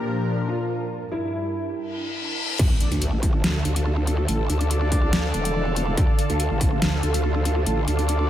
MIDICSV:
0, 0, Header, 1, 9, 480
1, 0, Start_track
1, 0, Key_signature, -1, "minor"
1, 0, Tempo, 422535
1, 1027, Time_signature, 4, 2, 24, 8
1, 9425, End_track
2, 0, Start_track
2, 0, Title_t, "Ambient pad"
2, 0, Program_c, 0, 92
2, 0, Note_on_c, 0, 62, 79
2, 0, Note_on_c, 0, 70, 72
2, 0, Note_on_c, 0, 81, 82
2, 1661, Note_off_c, 0, 81, 0
2, 1987, Note_off_c, 0, 70, 0
2, 1988, Note_off_c, 0, 62, 0
2, 3244, Note_on_c, 0, 69, 87
2, 3677, Note_on_c, 0, 77, 89
2, 9425, Note_off_c, 0, 69, 0
2, 9425, Note_off_c, 0, 77, 0
2, 9425, End_track
3, 0, Start_track
3, 0, Title_t, "Brass ensemble"
3, 0, Program_c, 1, 61
3, 3186, Note_on_c, 1, 62, 75
3, 3186, Note_on_c, 1, 69, 71
3, 3186, Note_on_c, 1, 74, 83
3, 3301, Note_off_c, 1, 62, 0
3, 3301, Note_off_c, 1, 69, 0
3, 3301, Note_off_c, 1, 74, 0
3, 5106, Note_on_c, 1, 69, 100
3, 5107, Note_on_c, 1, 62, 107
3, 5107, Note_on_c, 1, 74, 122
3, 6999, Note_off_c, 1, 62, 0
3, 6999, Note_off_c, 1, 69, 0
3, 7000, Note_off_c, 1, 74, 0
3, 7027, Note_on_c, 1, 62, 80
3, 7027, Note_on_c, 1, 69, 72
3, 7027, Note_on_c, 1, 74, 89
3, 7142, Note_off_c, 1, 62, 0
3, 7142, Note_off_c, 1, 69, 0
3, 7142, Note_off_c, 1, 74, 0
3, 8947, Note_on_c, 1, 62, 108
3, 8947, Note_on_c, 1, 69, 102
3, 8947, Note_on_c, 1, 74, 119
3, 9425, Note_off_c, 1, 62, 0
3, 9425, Note_off_c, 1, 69, 0
3, 9425, Note_off_c, 1, 74, 0
3, 9425, End_track
4, 0, Start_track
4, 0, Title_t, "Grand piano"
4, 0, Program_c, 2, 0
4, 0, Note_on_c, 2, 67, 88
4, 456, Note_off_c, 2, 67, 0
4, 545, Note_on_c, 2, 65, 86
4, 1175, Note_off_c, 2, 65, 0
4, 1267, Note_on_c, 2, 64, 89
4, 2856, Note_off_c, 2, 64, 0
4, 9425, End_track
5, 0, Start_track
5, 0, Title_t, "Analog synth pad"
5, 0, Program_c, 3, 89
5, 0, Note_on_c, 3, 46, 81
5, 0, Note_on_c, 3, 53, 74
5, 0, Note_on_c, 3, 62, 72
5, 0, Note_on_c, 3, 70, 90
5, 1008, Note_off_c, 3, 53, 0
5, 1009, Note_off_c, 3, 46, 0
5, 1027, Note_on_c, 3, 43, 74
5, 1027, Note_on_c, 3, 55, 68
5, 1959, Note_off_c, 3, 62, 0
5, 1959, Note_off_c, 3, 70, 0
5, 1977, Note_off_c, 3, 43, 0
5, 1977, Note_off_c, 3, 55, 0
5, 2946, Note_on_c, 3, 50, 85
5, 2946, Note_on_c, 3, 62, 80
5, 2946, Note_on_c, 3, 69, 96
5, 2947, Note_on_c, 3, 65, 80
5, 9425, Note_off_c, 3, 50, 0
5, 9425, Note_off_c, 3, 62, 0
5, 9425, Note_off_c, 3, 65, 0
5, 9425, Note_off_c, 3, 69, 0
5, 9425, End_track
6, 0, Start_track
6, 0, Title_t, "Wobble bass"
6, 0, Program_c, 4, 39
6, 2946, Note_on_c, 4, 38, 101
6, 3053, Note_off_c, 4, 38, 0
6, 3313, Note_on_c, 4, 38, 98
6, 3533, Note_off_c, 4, 38, 0
6, 3553, Note_on_c, 4, 33, 94
6, 3888, Note_off_c, 4, 33, 0
6, 3907, Note_on_c, 4, 38, 104
6, 4129, Note_off_c, 4, 38, 0
6, 4147, Note_on_c, 4, 38, 97
6, 4849, Note_off_c, 4, 38, 0
6, 4867, Note_on_c, 4, 33, 99
6, 5089, Note_off_c, 4, 33, 0
6, 5107, Note_on_c, 4, 38, 98
6, 5607, Note_off_c, 4, 38, 0
6, 5607, Note_on_c, 4, 37, 98
6, 5809, Note_off_c, 4, 37, 0
6, 5827, Note_on_c, 4, 38, 104
6, 6049, Note_off_c, 4, 38, 0
6, 6067, Note_on_c, 4, 28, 96
6, 6769, Note_off_c, 4, 28, 0
6, 6787, Note_on_c, 4, 38, 101
6, 6893, Note_off_c, 4, 38, 0
6, 7153, Note_on_c, 4, 38, 95
6, 7373, Note_off_c, 4, 38, 0
6, 7393, Note_on_c, 4, 33, 99
6, 7729, Note_off_c, 4, 33, 0
6, 7747, Note_on_c, 4, 38, 104
6, 7969, Note_off_c, 4, 38, 0
6, 7987, Note_on_c, 4, 38, 102
6, 8689, Note_off_c, 4, 38, 0
6, 8707, Note_on_c, 4, 33, 101
6, 8929, Note_off_c, 4, 33, 0
6, 8947, Note_on_c, 4, 38, 100
6, 9425, Note_off_c, 4, 38, 0
6, 9425, End_track
7, 0, Start_track
7, 0, Title_t, "Impact"
7, 0, Program_c, 5, 103
7, 2946, Note_on_c, 5, 60, 80
7, 4867, Note_off_c, 5, 60, 0
7, 9425, End_track
8, 0, Start_track
8, 0, Title_t, "Reverse cymbal"
8, 0, Program_c, 6, 119
8, 1986, Note_on_c, 6, 60, 71
8, 2946, Note_off_c, 6, 60, 0
8, 9425, End_track
9, 0, Start_track
9, 0, Title_t, "Drums"
9, 2946, Note_on_c, 9, 36, 118
9, 2946, Note_on_c, 9, 42, 83
9, 2946, Note_on_c, 9, 49, 109
9, 3060, Note_off_c, 9, 36, 0
9, 3060, Note_off_c, 9, 42, 0
9, 3060, Note_off_c, 9, 49, 0
9, 3186, Note_on_c, 9, 42, 58
9, 3300, Note_off_c, 9, 42, 0
9, 3313, Note_on_c, 9, 42, 40
9, 3427, Note_off_c, 9, 42, 0
9, 3427, Note_on_c, 9, 42, 83
9, 3540, Note_off_c, 9, 42, 0
9, 3666, Note_on_c, 9, 36, 61
9, 3667, Note_on_c, 9, 46, 96
9, 3780, Note_off_c, 9, 36, 0
9, 3781, Note_off_c, 9, 46, 0
9, 3907, Note_on_c, 9, 38, 124
9, 3907, Note_on_c, 9, 42, 85
9, 4021, Note_off_c, 9, 38, 0
9, 4021, Note_off_c, 9, 42, 0
9, 4147, Note_on_c, 9, 42, 57
9, 4261, Note_off_c, 9, 42, 0
9, 4273, Note_on_c, 9, 42, 84
9, 4386, Note_off_c, 9, 42, 0
9, 4627, Note_on_c, 9, 42, 66
9, 4740, Note_off_c, 9, 42, 0
9, 4867, Note_on_c, 9, 42, 85
9, 4981, Note_off_c, 9, 42, 0
9, 5107, Note_on_c, 9, 42, 58
9, 5221, Note_off_c, 9, 42, 0
9, 5234, Note_on_c, 9, 42, 41
9, 5347, Note_off_c, 9, 42, 0
9, 5347, Note_on_c, 9, 42, 84
9, 5460, Note_off_c, 9, 42, 0
9, 5586, Note_on_c, 9, 46, 98
9, 5587, Note_on_c, 9, 36, 62
9, 5700, Note_off_c, 9, 46, 0
9, 5701, Note_off_c, 9, 36, 0
9, 5827, Note_on_c, 9, 38, 126
9, 5827, Note_on_c, 9, 42, 85
9, 5940, Note_off_c, 9, 38, 0
9, 5940, Note_off_c, 9, 42, 0
9, 6067, Note_on_c, 9, 42, 57
9, 6180, Note_off_c, 9, 42, 0
9, 6193, Note_on_c, 9, 42, 84
9, 6307, Note_off_c, 9, 42, 0
9, 6547, Note_on_c, 9, 42, 66
9, 6661, Note_off_c, 9, 42, 0
9, 6787, Note_on_c, 9, 36, 122
9, 6787, Note_on_c, 9, 42, 80
9, 6901, Note_off_c, 9, 36, 0
9, 6901, Note_off_c, 9, 42, 0
9, 7027, Note_on_c, 9, 42, 58
9, 7141, Note_off_c, 9, 42, 0
9, 7154, Note_on_c, 9, 42, 38
9, 7267, Note_off_c, 9, 42, 0
9, 7267, Note_on_c, 9, 42, 83
9, 7381, Note_off_c, 9, 42, 0
9, 7507, Note_on_c, 9, 36, 66
9, 7507, Note_on_c, 9, 46, 95
9, 7620, Note_off_c, 9, 36, 0
9, 7621, Note_off_c, 9, 46, 0
9, 7747, Note_on_c, 9, 38, 127
9, 7747, Note_on_c, 9, 42, 82
9, 7861, Note_off_c, 9, 38, 0
9, 7861, Note_off_c, 9, 42, 0
9, 7987, Note_on_c, 9, 42, 54
9, 8101, Note_off_c, 9, 42, 0
9, 8114, Note_on_c, 9, 42, 81
9, 8227, Note_off_c, 9, 42, 0
9, 8467, Note_on_c, 9, 42, 62
9, 8581, Note_off_c, 9, 42, 0
9, 8707, Note_on_c, 9, 42, 77
9, 8820, Note_off_c, 9, 42, 0
9, 8947, Note_on_c, 9, 42, 56
9, 9061, Note_off_c, 9, 42, 0
9, 9074, Note_on_c, 9, 42, 39
9, 9187, Note_off_c, 9, 42, 0
9, 9187, Note_on_c, 9, 42, 83
9, 9301, Note_off_c, 9, 42, 0
9, 9425, End_track
0, 0, End_of_file